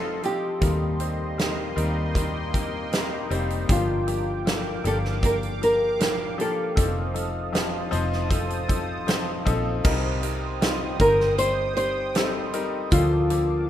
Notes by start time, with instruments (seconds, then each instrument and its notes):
Already playing: fingered electric bass F1, grand piano F3 C4 D#4 A4, nylon-string guitar A4, analog synth pad A4 D#5 F5 C6
0.23 grand piano F3 C4 D#4 G4, nylon-string guitar G4, closed hi-hat
0.61 fingered electric bass D#2, grand piano D#3 G3 C4 D#4 A#4, analog synth pad A#3 D#5 G5 C6, kick, closed hi-hat
1.00 grand piano G3 C4 D#4 C5, closed hi-hat
1.38 grand piano G3 C4 D#4 A#4, snare, closed hi-hat
1.76 fingered electric bass D#2, grand piano G3 C4 D#4 A#4, closed hi-hat
2.15 grand piano G3 C4 D#4 A#4, kick, closed hi-hat
2.53 grand piano G3 C4 D#4 A#4, kick, closed hi-hat
2.92 grand piano G3 C4 D#4 A#4, snare, closed hi-hat
3.30 fingered electric bass F1, grand piano G3 C4 D#4 C5, closed hi-hat
3.50 closed hi-hat
3.69 fingered electric bass G1, grand piano G2 F3 A#3 D4 G4, nylon-string guitar F4, analog synth pad F5 D6, kick, closed hi-hat
4.07 grand piano F3 A#3 D4 G4, closed hi-hat
4.46 grand piano F3 A#3 D4 A4, snare, closed hi-hat
4.84 fingered electric bass G1, grand piano F3 A#3 D4 G4, nylon-string guitar A4, closed hi-hat
5.05 snare
5.23 grand piano F3 A#3 D4 G4, nylon-string guitar A#4, kick, closed hi-hat
5.43 closed hi-hat
5.62 grand piano F3 A#3 D4 G4, nylon-string guitar A#4, closed hi-hat
6.00 grand piano F3 A#3 D4 A#4, snare, closed hi-hat
6.38 grand piano F3 A#3 D4 G4, nylon-string guitar A4, closed hi-hat
6.76 fingered electric bass F1, grand piano F3 C4 D#4 A4, analog synth pad C5 A5 D#6, kick, closed hi-hat
7.14 grand piano F3 C4 D#4 A4, closed hi-hat
7.53 grand piano F3 C4 D#4 G4, snare, closed hi-hat
7.91 fingered electric bass F1, grand piano F3 C4 D#4 C5, closed hi-hat
8.13 snare
8.30 grand piano F3 C4 D#4 A4, kick, closed hi-hat
8.50 closed hi-hat
8.68 grand piano F3 C4 D#4 A4, kick, closed hi-hat
9.07 grand piano F3 C4 D#4 C5, snare, closed hi-hat
9.45 fingered electric bass A#1, grand piano F3 C4 D#4 A4, kick, closed hi-hat
9.84 fingered electric bass C2, grand piano C3 G3 C4 D#4 A#4, analog synth pad C5 G5 D#6, kick, crash
10.23 grand piano G3 C4 D#4 A#4, closed hi-hat
10.61 grand piano G3 C4 D#4 F4, snare, closed hi-hat
10.99 fingered electric bass G1, grand piano G3 C4 D#4 A#4, nylon-string guitar A#4, kick, closed hi-hat
11.20 snare
11.38 grand piano G3 C4 D#4 G4, nylon-string guitar C5, closed hi-hat
11.77 grand piano G3 C4 D#4 G4, nylon-string guitar C5, closed hi-hat
12.15 grand piano G3 C4 D#4 A4, snare, closed hi-hat
12.53 grand piano G3 C4 D#4 A#4, closed hi-hat
12.92 fingered electric bass D2, grand piano D3 F3 A#3 D4 A4, analog synth pad A#3 F5 A5 D6, nylon-string guitar F4, kick, closed hi-hat
13.30 grand piano F3 A#3 D4 A4, closed hi-hat